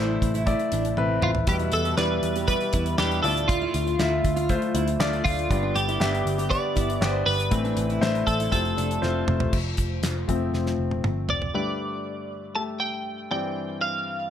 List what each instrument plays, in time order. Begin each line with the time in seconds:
Already playing: picked electric bass A1, grand piano A2 E3 A3 E4 C5, analog synth pad C3 A3 E4, clean electric guitar E4
0.22 picked electric bass A1, kick, closed hi-hat
0.34 steel-string acoustic guitar E4, closed hi-hat
0.46 grand piano A3 E4 D5, kick, closed hi-hat
0.59 closed hi-hat
0.72 picked electric bass A1, steel-string acoustic guitar D4, closed hi-hat
0.85 closed hi-hat
0.97 picked electric bass A1, grand piano A3 E4 B4, steel-string acoustic guitar C4, high tom
1.22 picked electric bass A1, clean electric guitar F4, mid tom
1.35 floor tom
1.47 picked electric bass E2, grand piano B2 G3 E4 B4, analog synth pad E3 B3 G4, clean electric guitar G4, kick, closed hi-hat
1.59 steel-string acoustic guitar E4, closed hi-hat
1.72 picked electric bass E2, clean electric guitar A4, closed hi-hat
1.85 steel-string acoustic guitar G4, closed hi-hat
1.97 picked electric bass E2, grand piano G3 E4 D5, steel-string acoustic guitar E4, clean electric guitar B4, snare, clap
2.23 picked electric bass E2, closed hi-hat
2.36 steel-string acoustic guitar G4, closed hi-hat
2.48 grand piano G3 E4 D5, clean electric guitar B4, kick, closed hi-hat
2.61 closed hi-hat
2.73 picked electric bass E2, steel-string acoustic guitar E4, kick, closed hi-hat
2.86 closed hi-hat
2.98 picked electric bass E2, grand piano G3 E4 B4, steel-string acoustic guitar D4, clean electric guitar G4, snare, clap
3.11 closed hi-hat
3.23 picked electric bass D2, grand piano A2 A3 F4 D5, analog synth pad D3 A3 F4, clean electric guitar A4, open hi-hat
3.37 closed hi-hat
3.48 clean electric guitar F4, kick, closed hi-hat
3.62 steel-string acoustic guitar E4
3.74 picked electric bass D2, closed hi-hat
3.87 steel-string acoustic guitar F4, closed hi-hat
3.99 picked electric bass D2, grand piano A3 F4 E5, steel-string acoustic guitar E4, snare, clap
4.25 picked electric bass D2, kick, closed hi-hat
4.36 steel-string acoustic guitar F4, closed hi-hat
4.49 grand piano A3 F4 C5, kick, closed hi-hat
4.62 closed hi-hat
4.74 picked electric bass D2, steel-string acoustic guitar E4, closed hi-hat
4.88 closed hi-hat
5.00 picked electric bass D2, grand piano A3 F4 D5, steel-string acoustic guitar D4, snare, clap
5.13 closed hi-hat
5.25 picked electric bass D2, clean electric guitar F4, kick, open hi-hat
5.39 closed hi-hat
5.49 picked electric bass G1, grand piano G2 D3 B3 G4 D5, analog synth pad B3 G4, kick, closed hi-hat
5.63 steel-string acoustic guitar D4
5.75 picked electric bass G1, clean electric guitar G4, closed hi-hat
5.88 steel-string acoustic guitar E4, closed hi-hat
6.00 picked electric bass G1, grand piano B3 G4 E5, steel-string acoustic guitar D4, snare, clap
6.15 closed hi-hat
6.25 picked electric bass G1, closed hi-hat
6.38 steel-string acoustic guitar G4, closed hi-hat
6.51 grand piano B3 G4 D5, clean electric guitar D5, kick, closed hi-hat
6.75 picked electric bass G1, steel-string acoustic guitar E4, kick, closed hi-hat
6.90 closed hi-hat
7.01 picked electric bass G1, grand piano B3 G4 D5, steel-string acoustic guitar D4, snare, clap
7.08 clean electric guitar C5
7.26 picked electric bass G1, clean electric guitar B4, open hi-hat
7.40 closed hi-hat
7.51 picked electric bass A1, grand piano A2 E3 A3 C4 E4, analog synth pad C3 A3 E4, kick, closed hi-hat
7.64 steel-string acoustic guitar D4, closed hi-hat
7.77 picked electric bass A1, closed hi-hat
7.89 steel-string acoustic guitar E4, closed hi-hat
8.01 picked electric bass A1, grand piano A3 E4 C5, steel-string acoustic guitar D4, snare, clap
8.15 closed hi-hat
8.27 picked electric bass A1, clean electric guitar A4, kick, closed hi-hat
8.40 steel-string acoustic guitar E4, closed hi-hat
8.51 picked electric bass F1, grand piano C3 A3 F4 C5, analog synth pad F4, clean electric guitar A4, kick, closed hi-hat
8.65 closed hi-hat
8.77 picked electric bass F1, steel-string acoustic guitar D4, closed hi-hat
8.91 closed hi-hat
9.02 picked electric bass F1, grand piano A3 F4 C5, steel-string acoustic guitar C4, snare
9.28 picked electric bass F1, mid tom
9.40 floor tom
9.53 picked electric bass F1, analog synth pad A3 F4 C5, kick, crash
9.77 picked electric bass F1, kick, closed hi-hat
10.02 picked electric bass F1, snare, clap, closed hi-hat
10.28 picked electric bass F1, grand piano F3 A3 C4, kick, closed hi-hat
10.53 picked electric bass F1, snare
10.66 snare
10.78 picked electric bass F1
10.91 high tom
11.04 picked electric bass G1, mid tom
11.29 picked electric bass F1, clean electric guitar D5, floor tom
11.42 floor tom
11.54 grand piano G2 D3 A3 G4 B4, clean electric guitar D5
12.55 grand piano A3 G4 A4, clean electric guitar A5
12.80 clean electric guitar G5
13.31 grand piano G2 E3 G3 C4 D5, clean electric guitar G5
13.81 clean electric guitar F5